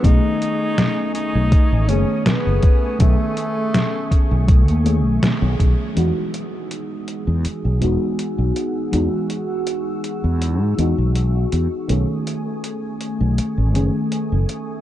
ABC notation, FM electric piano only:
X:1
M:4/4
L:1/8
Q:1/4=81
K:E
V:1 name="FM electric piano"
[D,A,B,CG]4- [D,A,B,CG] [D,A,B,CG]3 | [D,A,B,CG]4- [D,A,B,CG] [D,A,B,CG]3 | [E,G,B,DF]4- [E,G,B,DF] [E,G,B,DF]3 | [E,G,B,DF]4- [E,G,B,DF] [E,G,B,DF]3 |
[D,A,B,CG]4- [D,A,B,CG] [D,A,B,CG]3 |]